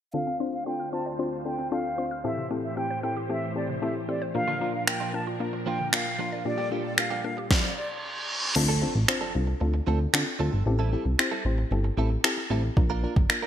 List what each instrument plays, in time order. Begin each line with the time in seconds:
0.14 string machine D2 D3 F4 C5, synth arpeggio sound D3, synth pluck C4 D4 F4 A4, flute F5
0.27 synth arpeggio sound C4
0.40 synth pluck C4 D4 F4 C5, synth arpeggio sound F4
0.53 flute F5
0.66 synth pluck C4 D4 F4 A4, flute G5, synth arpeggio sound C6
0.80 synth arpeggio sound F6
0.93 synth pluck C4 D4 F4 C5, flute A5, synth arpeggio sound C6
1.06 synth arpeggio sound D5
1.19 synth pluck C4 D4 F4 C5, synth arpeggio sound F4
1.45 synth pluck C4 D4 F4 A4, flute G5
1.59 synth arpeggio sound C4
1.71 synth pluck C4 D4 F4 A4, synth arpeggio sound F4, flute F5
1.98 synth pluck C4 D4 F4 C5, synth arpeggio sound C6
2.11 synth arpeggio sound F6
2.24 synth arpeggio sound A2, string machine A2 E3 G4 C5, synth pluck C4 E4 G4 A4, flute E5
2.37 synth arpeggio sound C3
2.50 synth arpeggio sound A3, synth pluck C4 E4 G4 A4
2.64 flute E5
2.77 synth pluck C4 E4 G4 A4, synth arpeggio sound A4, flute G5
2.90 synth arpeggio sound C5
3.03 synth pluck C4 E4 G4 A4, synth arpeggio sound A4, flute G5
3.17 synth arpeggio sound G4
3.29 synth arpeggio sound A3, synth pluck C4 E4 G4 A4, flute E5
3.55 synth pluck C4 E4 G4 A4, flute D5
3.69 synth arpeggio sound C3
3.82 synth arpeggio sound A3, synth pluck C4 E4 G4 A4, flute E5
4.08 synth pluck C4 E4 G4 C5, synth arpeggio sound A4, flute D5
4.22 synth arpeggio sound C5
4.35 string machine A#2 F3 D4 A#4, synth arpeggio sound A#2, synth pluck A#3 D4 F4 A#4, flute F5, muted clean electric guitar stroke
4.48 synth arpeggio sound D3, clean electric guitar F3 A#3 D4 F4
4.61 clean electric guitar F3 A#3 D4 F4, synth pluck A#3 D4 F4 A#4, synth arpeggio sound A#3
4.74 flute F5, muted clean electric guitar stroke
4.87 synth pluck A#3 D4 F4 A#4, synth arpeggio sound A#4, flute G5, finger snap, muted clean electric guitar stroke
5.00 clean electric guitar F3 A#3 D4 F4, synth arpeggio sound D5
5.13 synth pluck A#3 D4 F4 A#4, synth arpeggio sound A#4, flute A5, muted clean electric guitar stroke
5.27 synth arpeggio sound F4, muted clean electric guitar stroke
5.40 synth pluck A#3 D4 F4 A#4, synth arpeggio sound A#3, muted clean electric guitar stroke
5.53 muted clean electric guitar stroke
5.66 clean electric guitar F3 A#3 D4 F4, synth pluck A#3 D4 F4 A#4, flute G5
5.79 synth arpeggio sound D3, muted clean electric guitar stroke
5.92 synth pluck A#3 D4 F4 A#4, synth arpeggio sound A#3, flute F5, finger snap, muted clean electric guitar stroke
6.06 muted clean electric guitar stroke
6.19 clean electric guitar F3 A#3 D4 F4, synth pluck A#3 D4 F4 A#4, synth arpeggio sound A#4
6.32 clean electric guitar F3 A#3 D4 F4, synth arpeggio sound D5
6.45 synth arpeggio sound A#2, string machine A#2 G3 F4 A4, synth pluck A#3 D4 F4 G4, flute D5
6.58 synth arpeggio sound F3, clean electric guitar F3 A#3 D4 G4
6.71 clean electric guitar F3 A#3 D4 G4, synth pluck A#3 D4 F4 G4, synth arpeggio sound A#3
6.85 flute D5
6.97 synth pluck A#3 D4 F4 G4, synth arpeggio sound A#4, flute F5, finger snap, muted clean electric guitar stroke
7.10 clean electric guitar F3 A#3 D4 G4, synth arpeggio sound F5
7.24 synth pluck A#3 D4 F4 A4, synth arpeggio sound A#4, flute F5
7.37 synth arpeggio sound G4, muted clean electric guitar stroke
7.51 flute D5, kick, snare, reverse cymbal
7.77 flute D5
8.55 analog synth bass D2, synth pluck C4 D4 F4 A4, muted clean electric guitar stroke, crash, impact
8.68 clean electric guitar F3 C4 D4 A4
8.82 clean electric guitar F3 C4 D4 A4, synth pluck C4 D4 F4 A4
8.95 analog synth bass A1, muted clean electric guitar stroke
9.08 synth pluck C4 D4 F4 C5, finger snap, muted clean electric guitar stroke
9.21 clean electric guitar F3 C4 D4 A4
9.34 analog synth bass C2, synth pluck C4 D4 F4 A4, muted clean electric guitar stroke
9.47 muted clean electric guitar stroke
9.60 analog synth bass D2, synth pluck C4 D4 F4 A4, muted clean electric guitar stroke
9.74 muted clean electric guitar stroke
9.87 analog synth bass D2, clean electric guitar F3 C4 D4 A4, synth pluck C4 D4 F4 A4
10.13 analog synth bass D3, synth pluck C4 D4 F4 A4, finger snap, muted clean electric guitar stroke
10.26 muted clean electric guitar stroke
10.39 analog synth bass D2, clean electric guitar F3 C4 D4 A4, synth pluck C4 D4 F4 A4
10.53 analog synth bass G1, clean electric guitar F3 C4 D4 A4
10.66 analog synth bass A1, synth pluck C4 E4 G4 A4, muted clean electric guitar stroke
10.79 clean electric guitar G3 C4 E4 A4
10.92 clean electric guitar G3 C4 E4 A4, synth pluck C4 E4 G4 A4
11.05 analog synth bass C2, muted clean electric guitar stroke
11.18 synth pluck C4 E4 G4 C5, finger snap, muted clean electric guitar stroke
11.31 clean electric guitar G3 C4 E4 A4
11.45 analog synth bass A1, synth pluck C4 E4 G4 C5, muted clean electric guitar stroke
11.58 muted clean electric guitar stroke
11.71 analog synth bass G1, synth pluck C4 E4 G4 A4, muted clean electric guitar stroke
11.84 muted clean electric guitar stroke
11.97 analog synth bass A1, clean electric guitar G3 C4 E4 A4, synth pluck C4 E4 G4 A4
12.11 muted clean electric guitar stroke
12.24 synth pluck C4 E4 G4 A4, finger snap, muted clean electric guitar stroke
12.37 muted clean electric guitar stroke
12.50 analog synth bass A1, clean electric guitar G3 C4 E4 A4, synth pluck C4 E4 G4 A4
12.63 muted clean electric guitar stroke
12.77 analog synth bass A#1, synth pluck A#3 D4 F4 A#4, muted clean electric guitar stroke, kick
12.90 clean electric guitar A#3 D4 F4 A#4
13.03 clean electric guitar A#3 D4 F4 A#4, synth pluck A#3 D4 F4 A#4
13.16 analog synth bass G1, muted clean electric guitar stroke, kick
13.29 synth pluck A#3 D4 F4 A#4, finger snap, muted clean electric guitar stroke
13.42 clean electric guitar A#3 D4 F4 A#4